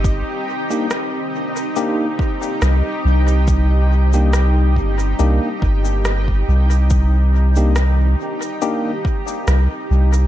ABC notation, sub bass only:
X:1
M:4/4
L:1/8
Q:"Swing 16ths" 1/4=70
K:Cm
V:1 name="Sub bass" clef=bass
G,,, z4 z C,, C,,- | C,,3 G,,, C,, G,,,2 C,,- | C,,3 z3 C,, C,, |]